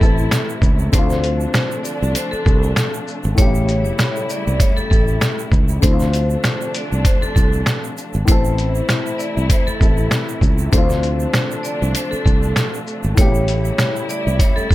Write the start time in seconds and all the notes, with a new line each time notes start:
Already playing: C3 E3 A3 E4 A4
0.00 A1 A2 E3 C4 A4, kick, shaker
0.18 shaker
0.31 snare, closed hi-hat, shaker
0.49 shaker
0.62 C#2, kick, shaker
0.79 shaker
0.92 D2 D3 F3 A3 D4 C5, kick, closed hi-hat, shaker
0.96 C4 F4
1.10 snare, shaker
1.24 closed hi-hat, shaker
1.40 shaker
1.54 snare, closed hi-hat, shaker
1.72 shaker
1.83 D5, shaker
2.02 C2, shaker
2.15 C5, closed hi-hat, shaker
2.31 A4, muted fretless electric bass stroke, shaker
2.45 C2 A4, kick, shaker
2.63 shaker
2.76 snare, closed hi-hat, shaker
2.94 shaker
3.08 shaker
3.23 G#1, shaker
3.35 A1 A2 A3 C#5, kick, closed hi-hat, shaker
3.39 C#3 G3 B3 E4 G4
3.46 C#3
3.55 shaker
3.69 closed hi-hat, shaker
3.85 shaker
3.99 snare, closed hi-hat, shaker
4.16 shaker
4.30 D5, shaker
4.47 C2, shaker
4.60 C#5, kick, closed hi-hat, shaker
4.77 A4, muted fretless electric bass stroke, shaker
4.90 A1 A4, kick, shaker
5.08 shaker
5.21 snare, closed hi-hat, shaker
5.39 shaker
5.52 C#2, kick, shaker
5.68 shaker
5.80 D2 C3 D3 F3 A3 D4 C5, kick, closed hi-hat, shaker
5.84 C4 E4
5.93 F4
6.00 snare, shaker
6.14 closed hi-hat, shaker
6.30 shaker
6.44 snare, closed hi-hat, shaker
6.61 shaker
6.75 D5, closed hi-hat, shaker
6.92 C2, shaker
7.05 C5, kick, closed hi-hat, shaker
7.22 A4, muted fretless electric bass stroke, shaker
7.35 C2 A4, kick, shaker
7.53 shaker
7.66 snare, closed hi-hat, shaker
7.84 shaker
7.97 shaker
8.13 G#1, shaker
8.25 A1 A2 C3 E3 E4 C5, kick, closed hi-hat, shaker
8.29 E3 A3 C4 A4
8.45 shaker
8.58 closed hi-hat, shaker
8.75 shaker
8.89 snare, closed hi-hat, shaker
9.06 shaker
9.18 D5, shaker
9.37 C2, shaker
9.50 C5, kick, closed hi-hat, shaker
9.67 A4, muted fretless electric bass stroke, shaker
9.79 A1 A2 E3 C4 A4, kick, shaker
9.97 shaker
10.11 snare, closed hi-hat, shaker
10.29 shaker
10.41 C#2, kick, shaker
10.58 shaker
10.71 D2 D3 F3 A3 D4 C5, kick, closed hi-hat, shaker
10.76 C4 F4
10.90 snare, shaker
11.03 closed hi-hat, shaker
11.20 shaker
11.34 snare, closed hi-hat, shaker
11.51 shaker
11.63 D5, shaker
11.82 C2, shaker
11.95 C5, closed hi-hat, shaker
12.11 A4, muted fretless electric bass stroke, shaker
12.25 C2 A4, kick, shaker
12.43 shaker
12.56 snare, closed hi-hat, shaker
12.74 shaker
12.87 shaker
13.03 G#1, shaker
13.14 A1 A2 A3 E4 C#5, kick, closed hi-hat, shaker
13.19 C#3 G3 B3 G4
13.25 C#3
13.35 shaker
13.48 closed hi-hat, shaker
13.65 shaker
13.78 snare, closed hi-hat, shaker
13.96 shaker
14.09 D5, shaker
14.27 C2, shaker
14.39 C#5, kick, closed hi-hat, shaker
14.56 A4, muted fretless electric bass stroke, shaker
14.69 A1 A4, kick, shaker